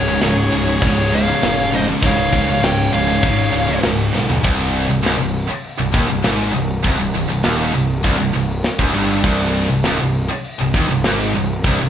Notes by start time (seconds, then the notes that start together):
Already playing: C#1 C#2 G#2 C#3 G#4 C#5
0.09 C#2 G#2
0.21 C#1 C#2 G#2, snare, ride
0.52 C#1 C#2 G#2, ride
0.67 C#2 G#2
0.82 C#1 C#2 G#2 C#3 G#4 C#5, kick, ride
1.12 C#2 G#2 C#5 F5, ride
1.28 C#2 G#2
1.43 F1 C#2 G#2, snare, ride
1.74 C#2 G#2 C5 D#5, ride
1.90 C#2 G#2
2.03 C#1 C#2 G#2 C#3 C#5 F5, kick, ride
2.33 C#1 C#2 G#2, kick, ride
2.48 C#2 G#2
2.63 C#1 C#2 G#2 C#5 G5, snare, ride
2.93 C#1 C#2 G#2 C#5 F5, ride
3.08 C#2 G#2
3.23 G#1 C#2 G#2 C#3, kick, ride
3.52 C#1 C#2 G#2, ride
3.67 C#2 G#2, snare
3.83 C#1 C#2 G#2, snare, ride
4.14 B1 C#2 G#2, snare
4.29 C#2 G#2, floor tom
4.43 C1 C2, kick, open hi-hat
4.75 open hi-hat
4.88 C1 C2
5.03 C#1 C#2, snare, open hi-hat
5.18 C1 C2
5.34 open hi-hat
5.50 muted distorted electric guitar stroke, muted picked electric bass stroke
5.64 open hi-hat
5.79 C1 C2
5.92 D#1 D#2, kick, open hi-hat
6.08 C1 C2
6.24 G#1 G#2, snare, open hi-hat
6.54 C1 C2, open hi-hat
6.84 C1 C2, kick, open hi-hat
6.99 C1 C2
7.14 C1 C2, open hi-hat
7.30 C1 C2
7.43 D#1 D#2, snare, open hi-hat
7.75 C1 C2, open hi-hat
8.03 C1 C2, kick, open hi-hat
8.18 C1 C2
8.34 C1 C2, open hi-hat
8.64 snare, open hi-hat
8.79 C#1 C#2, kick
8.94 G1 G2, open hi-hat
9.24 C1 C2, kick, open hi-hat
9.54 open hi-hat
9.70 C1 C2
9.84 C#1 C#2, snare, open hi-hat
10.00 C1 C2
10.15 open hi-hat
10.29 muted distorted electric guitar stroke, muted picked electric bass stroke
10.44 open hi-hat
10.59 C1 C2
10.74 D#1 D#2, kick, open hi-hat
10.90 C1 C2
11.04 G#1 G#2, snare, open hi-hat
11.35 C1 C2, open hi-hat
11.64 C1 C2, kick, open hi-hat
11.80 C1 C2